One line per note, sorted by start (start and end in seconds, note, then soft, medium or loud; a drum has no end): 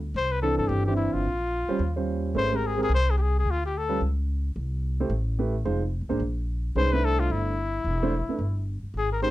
0.00 0.12 D2 medium
0.14 0.56 C2 medium
0.14 0.33 C5 loud
0.32 0.42 B4 medium
0.42 0.84 E3 medium
0.42 0.83 C4 medium
0.42 0.84 D4 medium
0.42 0.58 A4 medium
0.42 0.84 A4 medium
0.58 0.68 G2 medium
0.58 0.70 A4 medium
0.68 1.11 G1 medium
0.68 0.86 G4 medium
0.86 1.24 E3 medium
0.86 1.24 C4 medium
0.86 1.24 D4 medium
0.86 1.24 E4 medium
0.86 0.96 G4 medium
0.96 1.15 E4 medium
1.13 1.24 G1 medium
1.13 1.96 F4 medium
1.25 1.66 A#1 medium
1.69 1.79 G3 medium
1.69 1.79 C#4 medium
1.69 1.79 F4 medium
1.69 1.79 C5 medium
1.69 muted upright bass stroke soft
1.79 2.32 D#2 medium
1.96 2.33 G3 medium
1.96 2.33 C#4 medium
1.96 2.33 F4 medium
1.96 2.33 C5 medium
2.34 2.87 G#1 medium
2.34 2.50 A3 medium
2.34 2.50 C#4 medium
2.34 2.50 G#4 medium
2.34 2.50 B4 medium
2.34 2.57 C5 loud
2.52 2.76 G#3 medium
2.52 2.76 C4 soft
2.52 2.76 G4 soft
2.52 2.76 A#4 medium
2.56 2.68 A#4 medium
2.67 2.81 G#4 medium
2.77 2.88 G#3 medium
2.77 2.88 C4 medium
2.77 2.88 G4 medium
2.77 2.89 A#4 medium
2.83 2.92 G#4 medium
2.89 3.42 C2 medium
2.95 3.12 C5 medium
3.10 3.17 G#4 medium
3.18 3.23 G4 medium
3.18 3.36 G#4 medium
3.39 3.52 G#4 medium
3.45 3.97 D2 medium
3.51 3.65 F4 medium
3.66 3.79 G4 medium
3.78 4.03 A4 medium
3.88 3.99 G3 medium
3.88 3.99 C#4 medium
3.88 3.99 F4 medium
3.88 3.99 B4 medium
4.01 4.53 C#2 medium
4.56 5.08 C2 medium
5.00 5.10 A3 medium
5.00 5.10 E4 medium
5.00 5.10 G4 medium
5.00 5.10 C5 medium
5.10 5.62 A1 medium
5.39 5.53 A3 medium
5.39 5.53 E4 medium
5.39 5.53 G4 medium
5.39 5.54 B4 medium
5.65 6.00 F1 medium
5.65 5.80 G#3 medium
5.65 5.80 D#4 medium
5.65 5.80 F4 medium
5.65 5.80 C5 medium
6.01 6.10 C2 medium
6.09 6.19 G#1 medium
6.09 6.19 A#3 medium
6.09 6.19 D4 medium
6.09 6.19 G#4 medium
6.09 6.19 C5 medium
6.20 6.72 A#1 medium
6.76 7.27 C2 medium
6.76 6.91 G#3 medium
6.76 6.91 C#4 medium
6.76 6.90 D#4 medium
6.76 6.91 B4 medium
6.76 6.94 C5 loud
6.93 7.51 A3 medium
6.93 7.52 D4 medium
6.93 7.52 E4 medium
6.93 7.06 B4 medium
6.93 7.52 C5 medium
7.05 7.21 A4 loud
7.20 7.33 F4 medium
7.30 7.82 G1 medium
7.30 8.68 E4 medium
7.85 8.26 E1 medium
8.02 8.12 A3 medium
8.02 8.12 D4 medium
8.02 8.12 E4 medium
8.02 8.12 C5 medium
8.28 8.39 A3 soft
8.28 8.39 D4 soft
8.28 8.39 E4 soft
8.28 8.39 B4 medium
8.28 muted upright bass stroke soft
8.39 8.80 G1 medium
8.83 muted upright bass stroke soft
8.94 9.31 G#1 medium
8.98 9.12 G#4 medium
9.12 9.22 A#4 medium
9.22 9.31 G#3 medium
9.22 9.31 C4 soft
9.22 9.31 D#4 medium
9.22 9.31 G4 medium
9.22 9.31 A#4 medium
9.22 9.30 C5 medium